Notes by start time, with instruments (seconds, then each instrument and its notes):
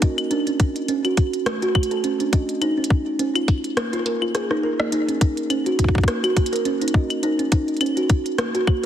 0.02 kalimba D#5, kick, closed hi-hat
0.18 closed hi-hat, claves
0.31 kalimba D4, closed hi-hat
0.47 kalimba C#4, closed hi-hat
0.60 kick, closed hi-hat
0.76 closed hi-hat
0.88 kalimba C#4, closed hi-hat
1.05 kalimba F#4, closed hi-hat, claves
1.17 kick, closed hi-hat
1.33 closed hi-hat
1.46 kalimba A3, cross-stick, closed hi-hat
1.62 kalimba F#4, closed hi-hat
1.75 kalimba A3, kick, claves
1.83 closed hi-hat
1.91 kalimba A4, closed hi-hat
2.04 kalimba C#4, closed hi-hat
2.20 kalimba D4, closed hi-hat
2.33 kalimba D#5, kick, closed hi-hat
2.49 closed hi-hat
2.62 kalimba D#4, closed hi-hat, claves
2.78 kalimba C#4
2.84 closed hi-hat
2.90 kick
3.19 kalimba C#4, closed hi-hat
3.35 kalimba F4, closed hi-hat, claves
3.48 kick, closed hi-hat
3.64 closed hi-hat
3.77 kalimba A#3, cross-stick, closed hi-hat
3.93 kalimba F4, closed hi-hat
4.06 kalimba A#4, closed hi-hat
4.22 kalimba F4, claves
4.35 kalimba G#4, cross-stick, closed hi-hat
4.51 kalimba D#4, cross-stick
4.63 kalimba A#4
4.80 kalimba A#3, cross-stick
4.92 kalimba D#4, closed hi-hat
5.08 kalimba C#4, closed hi-hat
5.21 kalimba D#4, kick, closed hi-hat
5.37 closed hi-hat
5.50 kalimba C#4, closed hi-hat, claves
5.66 kalimba F#4, closed hi-hat
5.79 kick, closed hi-hat
5.84 kick
5.89 kick
5.95 kick
5.98 kick
6.04 kick
6.08 kalimba A#3, cross-stick, closed hi-hat
6.24 kalimba F#4, closed hi-hat, claves
6.36 kalimba A#3, kick, closed hi-hat
6.46 closed hi-hat
6.53 kalimba A#4, closed hi-hat
6.56 closed hi-hat
6.65 kalimba C#4, closed hi-hat
6.82 kalimba D#4, closed hi-hat
6.88 closed hi-hat
6.94 kalimba D#5, kick
7.10 closed hi-hat, claves
7.23 kalimba D#4, closed hi-hat
7.39 kalimba C#4, closed hi-hat
7.52 kalimba D#4, kick, closed hi-hat
7.68 closed hi-hat
7.77 closed hi-hat
7.81 kalimba C#4, closed hi-hat, claves
7.86 closed hi-hat
7.97 kalimba F#4, closed hi-hat
8.10 kick, closed hi-hat
8.26 closed hi-hat
8.38 kalimba A#3, cross-stick, closed hi-hat
8.55 kalimba F#4, closed hi-hat
8.67 kalimba A#3, kick, claves